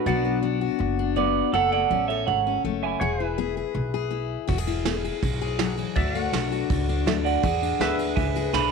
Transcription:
Already playing: F#4 B4
0.06 B1 B2 F#3 B3 D4 F#4 D5 F#5
0.25 B3
0.43 F#3 D4
0.61 F#4
0.79 F#1 F#2
0.99 D4
1.16 F#3 B3 B4 D5
1.53 F#1 F#2 A4 C#5 F#5
1.72 A3 D5 F#5
1.91 A1 F#3 C#4
2.08 A4 C#5 E5
2.27 G#1 C#3 C#5 F#5
2.47 C#4
2.64 F#1 F#3 A3
2.83 E5 G#5
3.00 E1 E3 G#4 C#5 F#5
3.20 E4
3.25 B4 E5
3.38 B3 G#4
3.57 G#4
3.75 B1 B2
3.94 G#4
4.11 B3 E4
4.47 E1 E3 F#4, kick, ride
4.58 G#4
4.67 E4, ride
4.85 B3 G#4, snare, ride
5.04 G#4, ride
5.23 B1 B2, kick, ride
5.41 G#4, ride
5.59 F#3, snare, ride
5.77 E3, ride
5.96 D2 D3 F#4 D5 E5, kick, ride
6.15 A3, ride
6.22 F#5
6.32 B1 F#3 D4, snare, ride
6.52 F#4, ride
6.70 C#2 A2, kick, ride
6.89 D4, ride
7.06 D2 F#3 A3 A4 E5, snare, ride
7.25 D5 F#5, ride
7.43 E2 E3 G#4, kick, ride
7.62 D4, ride
7.80 D2 B3 G#4 B4 E5, snare, ride
7.99 G#4, ride
8.16 C#2 B2 E5 G#5, kick, ride
8.35 G#4, ride
8.53 B1 B3 D4 G#5 B5, snare, ride

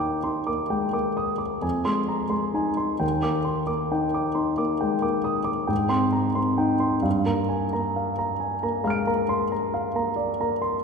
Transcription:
Already playing: D#2 A#3 D#4 G5 C6
0.00 D6
0.24 D#4 C6
0.47 A#3 D6
0.70 G#3 G5
0.93 A#3 D6
1.17 D#6
1.38 D6
1.62 F2 G#5
1.85 G#3 C6
2.08 A#5
2.30 G#3 C6
2.54 D#4 G#5
2.77 C6
2.99 D#2 G5
3.23 A#3 D6
3.45 C6
3.67 A#3 D6
3.92 D#4 G5
4.14 D6
4.35 D#4 C6
4.58 A#3 D6
4.81 G#3 G5
5.02 A#3 D6
5.24 D#6
5.44 D6
5.67 G#2 G5
5.89 C4 C6
6.13 A#5
6.35 C4 C6
6.58 D#4 G5
6.80 C6
7.02 G2 F5
7.26 A#3 A#5
7.49 G#5
7.73 A#3 A#5
7.96 F5
8.19 A#5
8.40 G#5
8.63 A#3 A#5
8.84 G#3 F5 A#5 F6
8.90 D7
9.07 A#3 A#5
9.29 C6
9.52 A#5
9.74 F5
9.95 A#3 A#5
10.16 D5
10.41 A#3 A#5
10.62 C6

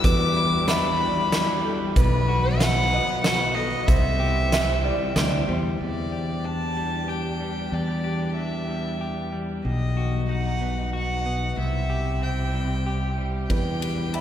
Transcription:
Already playing: E3 G3 B3 D4 E4 F#4 G4
0.04 E2 B4 D6, kick, closed hi-hat
0.36 E4
0.68 D4 E5 B5, snare, closed hi-hat
1.00 G3 D5
1.32 E4, snare, closed hi-hat
1.64 G3 A4
1.96 B1 B2 D#3 F#3 B3 B4, kick, closed hi-hat
2.28 F#4
2.60 E5 F#5, snare, closed hi-hat
2.92 B3 D#5
3.24 F#4 F#5, snare, closed hi-hat
3.54 B3 A4 D#5
3.87 C2 C3 E3 G3 C4 C5 E5, kick, closed hi-hat
4.20 G4
4.52 E4 E5, snare, closed hi-hat
4.84 G3 D5
5.16 D2 G4, snare, closed hi-hat
5.48 E2 G3 C5
5.80 E2 E3 B3 D4 G4 D5
6.12 G4
6.44 D4 A5
6.76 G3
7.08 G4 G5
7.40 G3
7.72 E2 D5
8.04 G4
8.36 D4 E5
8.69 G3
9.01 G4
9.32 G3
9.65 B1 B2 D#4 D#5
9.97 F#4
10.29 D#4 F#5
10.61 B3
10.93 F#4 F#5
11.26 B3
11.56 C2 C3 C4 E4 G4 E5
11.90 G4
12.22 C4 G5
12.53 G3
12.86 G4
13.18 G3
13.49 E2 E3 B3 D4 B4 G5, kick, ride
13.82 G4, ride
14.13 D4 E5 B5, ride

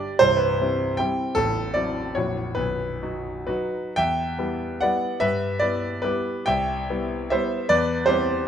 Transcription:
Already playing: G3 D4 G4 D5
0.19 C1 C2 C5
0.37 B4
0.61 G3 C4 E4
0.97 G3 C4 E4 G5
1.35 A0 A1 A4
1.74 F#3 C4 E4 D5
2.15 A#0 A#1 F#3 E4 F#4 C#5
2.55 B0 B1 B4
3.02 F#3 D#4 F#4
3.47 F#3 D#4 F#4 B4
3.96 E2 E5 G5
4.38 G3 B3 E4
4.81 G3 B3 E4 D5 F#5
5.20 G2 B4 E5
5.59 G3 B3 E4 B4 D5
6.02 G3 B3 E4 G4 B4
6.46 C2 E5 G5
6.90 G3 B3 E4
7.30 G3 B3 E4 C5 E5
7.69 E2 B4 D5
8.06 G3 C4 E4 G4 C5

